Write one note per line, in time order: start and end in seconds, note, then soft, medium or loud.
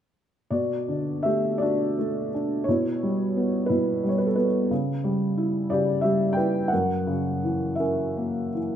0.50 2.63 B2 soft
0.50 1.21 F#4 soft
0.50 1.27 D5 medium
0.88 2.29 D3 soft
1.23 1.97 A3 soft
1.23 1.59 G4 soft
1.23 1.61 E5 medium
1.58 2.63 F#4 soft
1.58 2.69 D5 medium
1.62 2.33 D4 soft
1.98 2.65 A3 soft
2.34 2.67 D4 soft
2.64 3.70 C#5 medium
2.68 3.68 B2 soft
2.68 3.66 E4 soft
3.03 4.02 G3 soft
3.37 4.36 B3 soft
3.66 4.68 B2 soft
3.66 4.08 E4 soft
3.66 4.06 B4 medium
4.04 4.69 G3 soft
4.09 4.18 C#5 soft
4.18 4.27 B4 soft
4.27 4.36 A4 soft
4.36 4.70 B3 soft
4.36 4.45 B4 soft
4.71 5.69 C#3 soft
5.04 6.02 G3 soft
5.38 6.36 E4 soft
5.70 6.69 C#3 soft
5.70 6.03 G4 soft
5.70 6.04 D5 medium
6.01 6.70 G3 soft
6.01 6.35 G4 soft
6.01 6.37 E5 medium
6.33 6.71 G5 medium
6.37 6.71 E4 soft
6.37 6.69 B4 soft
6.68 7.80 F#5 medium
6.73 8.76 F#2 soft
6.73 7.76 A#4 soft
7.07 8.49 C#3 soft
7.43 8.53 E3 soft
7.75 8.57 E5 soft
7.80 8.76 C#4 soft
7.80 8.59 A#4 soft
8.18 8.76 A#3 soft
8.54 8.76 E3 soft